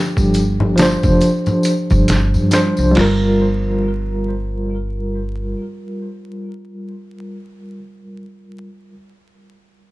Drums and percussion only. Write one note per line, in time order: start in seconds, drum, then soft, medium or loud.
0.17 kick medium
0.17 tambourine soft
0.34 closed hi-hat medium
0.34 tambourine medium
0.60 low conga medium
0.78 snare loud
0.78 closed hi-hat medium
0.78 tambourine medium
1.03 kick medium
1.03 tambourine soft
1.21 closed hi-hat medium
1.21 tambourine medium
1.46 tambourine soft
1.46 low conga medium
1.63 closed hi-hat medium
1.63 tambourine medium
1.90 kick medium
1.90 tambourine soft
2.08 snare loud
2.08 closed hi-hat medium
2.08 tambourine medium
2.34 tambourine soft
2.51 snare loud
2.51 closed hi-hat medium
2.51 tambourine loud
2.77 tambourine soft
2.95 snare loud
2.95 crash medium